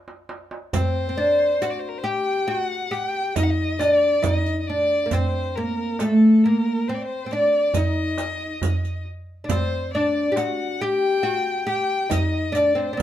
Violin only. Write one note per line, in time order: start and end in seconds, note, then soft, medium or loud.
0.75 1.72 C5 medium
1.70 1.81 D5 medium
1.79 1.90 C5 medium
1.88 1.99 A#4 medium
1.98 2.07 C5 medium
2.06 2.50 G5 medium
2.50 2.61 G5 medium
2.61 2.93 F#5 medium
2.93 3.04 F#5 medium
3.04 3.36 G5 medium
3.37 3.45 D#5 medium
3.43 3.52 F#5 medium
3.50 3.79 D#5 medium
3.79 3.91 D#5 medium
3.91 4.24 D5 medium
4.24 4.35 D5 medium
4.35 4.60 D#5 medium
4.60 4.69 D#5 medium
4.67 5.13 D5 medium
5.11 5.57 C5 medium
5.56 6.01 A#4 medium
5.99 6.45 A4 medium
6.44 6.89 A#4 medium
6.88 6.96 C5 medium
6.94 7.03 D5 medium
7.02 7.33 C5 medium
7.31 7.76 D5 medium
7.74 9.06 D#5 medium
9.49 9.90 C5 medium
9.93 10.39 D5 medium
10.37 10.81 F#5 medium
10.80 11.68 G5 loud
11.68 12.14 G5 medium
12.12 12.58 D#5 medium
12.56 12.79 D5 medium
12.78 12.99 C5 medium